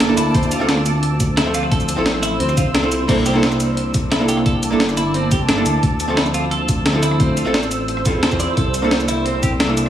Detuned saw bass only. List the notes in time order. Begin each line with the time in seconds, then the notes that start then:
0.00 G1
0.17 D2
0.34 D2
1.71 D2
1.97 A1
2.40 D2
2.66 C2
3.09 C2
4.46 C2
4.72 G1
5.40 C2
5.48 G1
5.66 D2
5.83 D2
7.20 D2
7.46 A1
8.06 G2
8.14 E2
8.57 C2